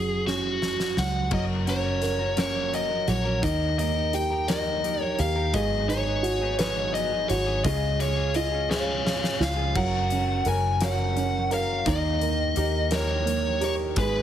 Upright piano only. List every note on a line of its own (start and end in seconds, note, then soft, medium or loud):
0.00 0.97 F#3 medium
0.00 0.26 C#4 soft
0.28 1.29 C#4 soft
0.97 1.30 F#3 soft
1.31 3.06 F#3 medium
1.67 2.36 C#4 soft
2.02 3.39 A#4 soft
2.37 3.40 C#4 soft
3.07 3.42 F#3 soft
3.43 5.50 D#3 medium
3.78 5.15 A#3 soft
4.13 5.17 G4 soft
4.48 5.51 A#4 soft
5.19 5.53 G4 medium
5.53 7.60 G#3 medium
5.88 7.25 D#4 medium
6.23 7.29 F#4 medium
6.59 7.61 B4 medium
7.30 7.64 F#4 medium
7.66 9.72 C#3 medium
8.02 9.37 G#3 medium
8.36 9.39 F4 medium
8.70 9.72 G#4 medium
9.40 9.74 F4 medium
9.76 11.82 F#3 medium
10.12 11.15 C#4 medium
10.46 11.50 A#4 medium
10.82 11.83 C#5 medium
11.16 11.84 C#4 medium
11.51 11.85 A#4 medium
11.87 13.93 D#3 medium
12.22 13.24 A#3 medium
12.57 13.59 G4 medium
12.91 13.94 A#4 medium
13.25 13.94 A#3 medium
13.61 13.95 G4 medium
13.97 14.22 G#3 medium